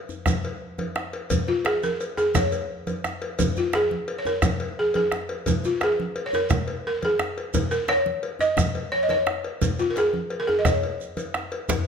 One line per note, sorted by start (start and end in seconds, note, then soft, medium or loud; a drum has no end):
0.09 djembe slap soft
0.09 djembe tone medium
0.09 shekere soft
0.26 bombo rim loud
0.26 bombo low loud
0.26 cowbell soft
0.26 djembe slap medium
0.26 high conga medium
0.26 djembe bass medium
0.26 low conga medium
0.26 shekere medium
0.43 cowbell soft
0.43 djembe slap soft
0.78 bombo rim soft
0.78 cowbell soft
0.78 djembe tone medium
0.78 high conga medium
0.96 bombo rim medium
0.96 djembe slap medium
1.13 cowbell soft
1.13 djembe slap soft
1.30 bombo low medium
1.30 cowbell medium
1.30 djembe slap soft
1.30 high conga medium
1.30 djembe bass medium
1.30 low conga medium
1.30 shekere medium
1.48 1.66 F4 medium
1.48 bombo rim soft
1.48 djembe tone medium
1.48 high conga soft
1.65 1.74 G#4 medium
1.65 bombo rim medium
1.65 cowbell soft
1.65 djembe slap medium
1.82 2.19 A#4 medium
1.82 djembe slap soft
1.82 high conga medium
1.82 shekere soft
2.00 cowbell soft
2.00 high conga soft
2.00 shekere soft
2.17 2.35 G#4 medium
2.17 djembe slap soft
2.17 djembe tone medium
2.17 shekere soft
2.35 3.18 C#5 medium
2.35 bombo rim medium
2.35 bombo low medium
2.35 cowbell soft
2.35 djembe slap medium
2.35 high conga medium
2.35 low conga medium
2.35 djembe bass medium
2.35 shekere medium
2.52 bombo rim soft
2.52 cowbell soft
2.52 djembe slap soft
2.52 shekere soft
2.87 bombo rim soft
2.87 cowbell soft
2.87 high conga medium
2.87 djembe tone medium
2.87 shekere soft
3.04 bombo rim medium
3.04 djembe slap medium
3.04 shekere soft
3.22 cowbell soft
3.22 djembe slap soft
3.39 bombo rim soft
3.39 bombo low loud
3.39 cowbell medium
3.39 high conga medium
3.39 low conga medium
3.39 djembe bass medium
3.39 shekere medium
3.56 3.73 F4 medium
3.56 djembe tone medium
3.56 high conga soft
3.56 shekere soft
3.73 4.16 G#4 medium
3.73 bombo rim medium
3.73 cowbell soft
3.73 djembe slap medium
3.91 high conga medium
4.08 cowbell medium
4.08 high conga soft
4.18 4.25 C#5 medium
4.25 4.79 A#4 medium
4.25 djembe slap soft
4.25 djembe tone medium
4.25 shekere soft
4.42 bombo rim loud
4.42 bombo low medium
4.42 cowbell soft
4.42 djembe slap medium
4.42 high conga medium
4.42 djembe bass medium
4.42 low conga medium
4.42 shekere medium
4.60 cowbell soft
4.60 djembe slap soft
4.79 4.87 G#4 medium
4.94 5.32 G#4 medium
4.94 bombo rim soft
4.94 cowbell medium
4.94 djembe tone medium
4.94 high conga medium
5.12 bombo rim medium
5.12 djembe slap medium
5.29 cowbell medium
5.29 djembe slap soft
5.46 bombo rim soft
5.46 bombo low medium
5.46 cowbell medium
5.46 high conga medium
5.46 djembe bass medium
5.46 low conga medium
5.46 shekere medium
5.64 5.82 F4 medium
5.64 djembe tone medium
5.64 high conga soft
5.64 shekere soft
5.81 6.15 G#4 medium
5.81 bombo rim medium
5.81 cowbell soft
5.81 djembe slap medium
6.00 high conga medium
6.16 cowbell medium
6.16 high conga soft
6.26 6.33 C#5 medium
6.33 6.66 A#4 medium
6.33 djembe slap soft
6.33 djembe tone medium
6.33 shekere soft
6.50 bombo rim medium
6.50 bombo low loud
6.50 cowbell soft
6.50 djembe slap medium
6.50 high conga medium
6.50 djembe bass medium
6.50 low conga medium
6.50 shekere medium
6.68 cowbell soft
6.68 djembe slap soft
6.87 6.94 A#4 medium
7.02 7.40 G#4 medium
7.02 bombo rim soft
7.02 cowbell soft
7.02 high conga medium
7.02 djembe tone medium
7.19 bombo rim medium
7.19 djembe slap medium
7.37 cowbell soft
7.37 djembe slap soft
7.54 bombo rim soft
7.54 bombo low medium
7.54 cowbell medium
7.54 high conga medium
7.54 djembe bass medium
7.54 low conga medium
7.54 shekere medium
7.71 7.79 A#4 medium
7.71 high conga soft
7.71 shekere soft
7.88 8.42 C#5 loud
7.88 bombo rim loud
7.88 cowbell soft
7.88 djembe slap medium
8.06 high conga medium
8.23 cowbell soft
8.23 high conga soft
8.39 8.94 D#5 loud
8.39 djembe slap soft
8.39 djembe tone medium
8.39 shekere soft
8.57 bombo rim loud
8.57 bombo low loud
8.57 cowbell soft
8.57 djembe slap medium
8.57 high conga medium
8.57 djembe bass medium
8.57 low conga medium
8.57 shekere medium
8.75 cowbell soft
8.75 djembe slap soft
8.92 9.03 C#5 loud
9.03 9.10 D#5 medium
9.09 9.46 C#5 loud
9.09 bombo rim soft
9.09 cowbell soft
9.09 djembe tone medium
9.09 high conga medium
9.27 bombo rim loud
9.27 djembe slap medium
9.44 cowbell soft
9.44 djembe slap soft
9.61 bombo low loud
9.61 cowbell medium
9.61 high conga medium
9.61 low conga medium
9.61 djembe bass medium
9.61 shekere soft
9.79 9.90 F4 medium
9.79 bombo rim soft
9.79 djembe slap soft
9.79 high conga soft
9.79 djembe tone medium
9.79 shekere soft
9.90 9.97 A#4 medium
9.96 10.41 G#4 medium
9.96 cowbell soft
9.96 djembe slap medium
9.96 shekere soft
10.13 bombo rim soft
10.13 high conga medium
10.30 bombo rim soft
10.30 cowbell soft
10.30 djembe slap soft
10.40 10.48 A#4 medium
10.47 10.52 G#4 medium
10.47 bombo rim soft
10.47 djembe slap soft
10.47 high conga soft
10.47 djembe tone medium
10.59 10.65 D#5 medium
10.65 11.30 C#5 medium
10.65 bombo rim medium
10.65 bombo low loud
10.65 cowbell soft
10.65 djembe slap medium
10.65 high conga medium
10.65 low conga medium
10.65 djembe bass medium
10.65 shekere medium
10.82 cowbell soft
10.82 high conga soft
11.00 djembe slap soft
11.00 high conga soft
11.00 shekere soft
11.17 cowbell soft
11.17 djembe tone medium
11.17 high conga medium
11.17 shekere soft
11.34 bombo rim loud
11.34 djembe slap medium
11.51 bombo rim soft
11.51 cowbell soft
11.51 djembe slap soft
11.69 bombo rim soft
11.69 bombo low loud
11.69 cowbell medium
11.69 djembe slap loud
11.69 high conga medium
11.69 low conga medium
11.69 djembe bass medium
11.69 shekere medium